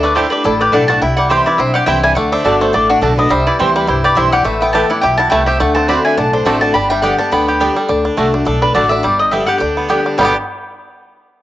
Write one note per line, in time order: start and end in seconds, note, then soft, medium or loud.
0.00 0.24 D2 medium
0.00 0.15 D3 medium
0.00 0.42 A3 medium
0.00 0.29 D4 medium
0.00 0.15 D5 medium
0.05 0.16 B4 medium
0.15 0.31 D3 medium
0.15 0.26 A3 loud
0.15 0.32 A3 medium
0.15 0.31 D4 loud
0.15 0.26 E4 medium
0.15 0.30 E4 loud
0.15 0.58 G4 medium
0.15 0.31 A4 medium
0.15 0.30 C5 medium
0.15 0.26 D5 medium
0.15 0.26 A5 loud
0.30 0.44 D4 medium
0.30 0.44 E4 medium
0.30 0.44 G4 medium
0.30 0.43 B4 medium
0.44 0.69 A1 loud
0.44 0.99 A2 loud
0.44 0.73 D4 medium
0.44 0.59 E4 medium
0.44 0.60 A4 medium
0.61 1.00 G4 medium
0.61 0.72 B4 medium
0.61 0.73 D5 medium
0.72 0.98 B1 medium
0.72 1.00 D3 medium
0.72 0.83 A3 loud
0.72 1.01 A3 loud
0.72 1.01 D4 medium
0.72 1.02 D4 medium
0.72 0.83 E4 medium
0.72 1.01 E4 loud
0.72 0.83 D5 loud
0.72 0.88 D5 medium
0.72 0.88 F#5 medium
0.72 0.83 A5 medium
0.88 1.02 A3 medium
0.88 1.01 F#5 medium
0.88 1.01 A5 loud
1.02 1.38 C2 medium
1.02 1.57 C3 medium
1.02 1.44 E4 medium
1.02 1.17 E5 medium
1.02 1.16 G5 medium
1.17 1.57 G3 medium
1.17 1.30 D5 medium
1.17 1.30 F#5 medium
1.29 1.58 E3 medium
1.29 1.58 G3 medium
1.29 1.40 C4 medium
1.29 1.58 C4 loud
1.29 1.40 E4 medium
1.29 1.59 E4 medium
1.29 1.72 G4 medium
1.29 1.40 C5 loud
1.29 1.46 C5 medium
1.29 1.46 E5 medium
1.29 1.41 G5 loud
1.46 1.86 E4 medium
1.46 1.59 B4 medium
1.46 1.59 D5 medium
1.58 1.84 B1 medium
1.58 2.14 G2 medium
1.58 2.01 C4 medium
1.58 1.74 C5 medium
1.58 1.73 E5 medium
1.74 2.14 G4 medium
1.74 1.87 D5 medium
1.74 1.86 F#5 medium
1.86 2.12 C2 medium
1.86 2.15 E3 loud
1.86 2.15 G3 loud
1.86 1.97 C4 medium
1.86 2.15 C4 loud
1.86 1.98 E4 medium
1.86 2.17 E4 medium
1.86 2.15 E4 loud
1.86 1.98 C5 medium
1.86 2.02 E5 medium
1.86 2.03 G5 loud
1.86 1.98 G5 loud
2.03 2.16 G3 medium
2.03 2.16 E5 medium
2.03 2.15 G#5 loud
2.15 2.34 D2 medium
2.15 2.43 D3 medium
2.15 2.58 A3 medium
2.15 2.32 D5 medium
2.15 2.31 F#5 medium
2.32 2.71 D4 medium
2.32 2.45 C5 medium
2.32 2.45 E5 medium
2.44 2.69 G1 medium
2.44 2.72 D3 medium
2.44 2.87 D3 medium
2.44 2.55 A3 medium
2.44 2.72 A3 medium
2.44 2.73 D4 medium
2.44 2.55 F#4 medium
2.44 2.73 F#4 loud
2.44 2.60 A4 medium
2.44 2.60 D5 medium
2.44 2.55 D5 medium
2.44 2.55 A5 medium
2.61 3.00 A3 medium
2.61 2.73 A4 medium
2.61 2.73 C5 medium
2.73 2.98 A1 medium
2.73 3.28 A2 medium
2.73 2.89 D4 medium
2.73 2.89 A4 medium
2.73 2.89 D5 medium
2.89 3.02 D4 medium
2.89 3.01 D4 medium
2.89 2.97 F#4 medium
3.01 3.26 B1 medium
3.01 3.17 D3 medium
3.01 3.12 A3 medium
3.01 3.17 A3 medium
3.01 3.17 D4 loud
3.01 3.17 D4 medium
3.01 3.12 F#4 medium
3.01 3.15 F#4 medium
3.01 3.13 D5 loud
3.01 3.13 A5 loud
3.16 3.31 D4 soft
3.16 3.31 D4 medium
3.16 3.29 F#4 medium
3.16 3.30 B4 medium
3.16 3.31 D#5 medium
3.29 3.49 C2 medium
3.29 3.85 C3 medium
3.29 3.72 G3 medium
3.29 3.46 C5 medium
3.29 3.46 E5 medium
3.47 3.86 E4 medium
3.47 3.59 B4 medium
3.47 3.59 D5 loud
3.59 3.85 D2 medium
3.59 3.87 E3 medium
3.59 4.01 E3 medium
3.59 3.87 G3 medium
3.59 3.69 C4 medium
3.59 3.87 C4 medium
3.59 3.70 E4 medium
3.59 3.87 E4 loud
3.59 3.75 G4 medium
3.59 3.75 C5 medium
3.59 3.70 C5 medium
3.59 3.70 G5 loud
3.76 4.15 G3 medium
3.76 3.88 G4 medium
3.76 3.88 B4 medium
3.87 4.13 C2 medium
3.87 4.43 G2 medium
3.87 4.16 E4 medium
3.87 4.04 G4 medium
3.87 4.04 C5 medium
4.04 4.32 G4 medium
4.04 4.16 B4 medium
4.04 4.17 D5 medium
4.15 4.42 B1 medium
4.15 4.43 E3 medium
4.15 4.44 G3 loud
4.15 4.26 C4 medium
4.15 4.44 C4 loud
4.15 4.27 E4 medium
4.15 4.46 E4 medium
4.15 4.45 E4 loud
4.15 4.27 C5 loud
4.15 4.32 C5 medium
4.15 4.32 E5 medium
4.15 4.27 G5 loud
4.32 4.46 G4 medium
4.32 4.45 D5 loud
4.32 4.44 F#5 loud
4.44 4.82 A1 medium
4.44 5.00 A2 loud
4.44 4.87 A3 medium
4.44 4.60 B4 medium
4.44 4.61 E5 medium
4.61 5.01 B3 medium
4.61 4.73 E5 medium
4.61 4.72 G5 medium
4.73 4.90 E3 medium
4.73 4.84 A3 medium
4.73 4.90 A3 medium
4.73 4.90 B3 medium
4.73 4.84 E4 medium
4.73 4.89 E4 medium
4.73 5.02 G4 medium
4.73 4.84 B4 medium
4.73 4.89 E5 medium
4.73 4.89 A5 loud
4.73 4.85 A5 loud
4.90 5.04 B3 medium
4.90 5.18 E4 medium
4.90 5.03 E4 medium
4.90 5.03 D5 medium
4.90 5.01 F#5 medium
5.01 5.28 B1 medium
5.01 5.30 B2 medium
5.01 5.45 G4 medium
5.01 5.18 E5 medium
5.01 5.17 G5 medium
5.18 5.58 E4 medium
5.18 5.31 F#5 loud
5.18 5.29 A5 loud
5.30 5.56 C2 medium
5.30 5.59 C3 medium
5.30 5.41 A3 medium
5.30 5.59 A3 medium
5.30 5.41 E4 loud
5.30 5.42 B4 loud
5.30 5.46 E5 medium
5.30 5.46 G5 medium
5.30 5.42 A5 loud
5.46 5.60 G4 medium
5.46 5.60 C5 medium
5.46 5.59 E5 medium
5.60 5.97 D2 loud
5.60 5.88 D3 medium
5.60 6.02 A3 medium
5.60 5.75 D5 medium
5.60 5.74 F#5 medium
5.75 6.15 C4 medium
5.75 5.88 F#5 medium
5.75 5.88 A5 loud
5.88 6.16 D3 medium
5.88 6.17 A3 medium
5.88 5.99 C4 medium
5.88 6.17 C4 medium
5.88 6.04 D4 medium
5.88 5.99 F#4 medium
5.88 6.17 F#4 medium
5.88 5.99 D5 medium
5.88 6.04 F#5 medium
5.88 5.99 A5 loud
5.88 6.04 B5 loud
6.05 6.17 D4 medium
6.05 6.17 E5 medium
6.05 6.17 G#5 medium
6.17 6.42 B1 medium
6.17 6.72 A2 medium
6.17 6.33 D4 medium
6.17 6.33 F#5 medium
6.17 6.33 A5 loud
6.33 6.62 D4 medium
6.33 6.46 A4 medium
6.33 6.46 C5 medium
6.45 6.70 A1 medium
6.45 6.73 D3 loud
6.45 6.73 A3 medium
6.45 6.75 A3 medium
6.45 6.56 C4 loud
6.45 6.73 C4 loud
6.45 6.56 F#4 medium
6.45 6.74 F#4 loud
6.45 6.61 C5 medium
6.45 6.56 D5 loud
6.45 6.61 E5 medium
6.45 6.56 A5 loud
6.61 6.75 D4 medium
6.61 6.74 F#5 medium
6.61 6.74 A5 loud
6.74 7.11 G1 loud
6.74 7.29 G2 medium
6.74 7.16 D4 medium
6.74 6.89 G5 medium
6.74 6.90 B5 medium
6.90 7.30 G3 medium
6.90 7.03 E5 medium
6.90 7.02 G5 loud
7.02 7.18 D3 medium
7.02 7.19 G3 medium
7.02 7.13 B3 medium
7.02 7.19 B3 loud
7.02 7.13 G4 loud
7.02 7.45 G4 medium
7.02 7.18 G4 medium
7.02 7.13 D5 loud
7.02 7.19 D5 medium
7.02 7.18 F#5 medium
7.02 7.14 G5 loud
7.19 7.32 B3 medium
7.19 7.58 D4 medium
7.19 7.31 G4 medium
7.19 7.31 F#5 medium
7.19 7.31 A5 medium
7.31 7.68 D2 medium
7.31 7.59 D3 medium
7.31 7.74 B3 medium
7.31 7.80 G5 medium
7.31 7.79 B5 medium
7.48 7.87 G4 medium
7.60 7.76 D3 medium
7.60 7.76 G3 loud
7.60 7.70 B3 medium
7.60 7.76 B3 loud
7.60 7.88 D4 medium
7.60 7.70 G4 medium
7.60 7.74 G4 loud
7.60 7.71 D5 loud
7.60 7.71 G5 loud
7.75 7.89 G3 medium
7.75 7.89 B3 soft
7.75 7.88 G4 medium
7.89 8.07 D2 medium
7.89 8.16 D3 medium
7.89 8.05 D4 medium
8.05 8.34 D4 medium
8.17 8.42 C2 medium
8.17 8.33 D3 medium
8.17 8.28 A3 medium
8.17 8.59 A3 medium
8.17 8.33 A3 medium
8.17 8.33 D4 medium
8.17 8.28 F#4 medium
8.17 8.31 F#4 medium
8.17 8.28 D5 loud
8.17 8.28 A5 medium
8.32 8.46 D4 soft
8.32 8.46 D4 medium
8.32 8.45 F#4 medium
8.45 8.71 B1 medium
8.45 9.01 A2 medium
8.45 8.62 D4 medium
8.45 8.62 A4 medium
8.62 8.91 D4 medium
8.62 8.74 B4 medium
8.74 9.00 A1 medium
8.74 8.90 D3 medium
8.74 9.04 D3 medium
8.74 8.85 A3 medium
8.74 8.90 A3 medium
8.74 8.90 D4 medium
8.74 8.85 F#4 medium
8.74 8.90 F#4 loud
8.74 8.90 D5 medium
8.74 8.85 D5 loud
8.74 8.85 A5 loud
8.89 9.33 D4 medium
8.89 9.04 D4 soft
8.89 9.03 F#4 medium
8.89 9.02 E5 loud
9.03 9.40 G1 medium
9.03 9.58 G2 medium
9.03 9.45 G3 medium
9.03 9.19 D5 medium
9.19 9.32 D#5 medium
9.31 9.48 D3 medium
9.31 9.48 G3 medium
9.31 9.42 B3 medium
9.31 9.48 B3 medium
9.31 9.60 D4 medium
9.31 9.42 G4 medium
9.31 9.46 G4 medium
9.31 9.42 D5 medium
9.31 9.46 E5 medium
9.31 9.43 G5 medium
9.47 9.61 B3 soft
9.47 9.60 G4 medium
9.47 9.87 G4 medium
9.47 9.58 F#5 loud
9.58 9.97 D2 medium
9.58 9.87 D3 medium
9.58 10.02 D4 medium
9.58 10.07 G5 medium
9.77 10.16 B3 medium
9.89 10.16 D3 medium
9.89 10.17 G3 medium
9.89 9.99 B3 medium
9.89 10.17 B3 medium
9.89 10.00 G4 medium
9.89 10.18 G4 medium
9.89 10.17 G4 loud
9.89 10.00 D5 medium
9.89 10.00 G5 medium
10.06 10.18 D4 medium
10.18 10.33 G1 medium
10.18 10.31 G2 medium
10.18 10.31 B2 medium
10.18 10.31 D3 medium
10.18 10.33 G3 medium
10.18 10.31 G3 medium
10.18 10.31 B3 medium
10.18 10.34 B3 medium
10.18 10.31 G4 medium
10.18 10.31 D5 medium
10.18 10.33 G5 medium
10.18 10.32 G5 medium
10.23 10.35 D4 medium
10.23 10.36 G4 medium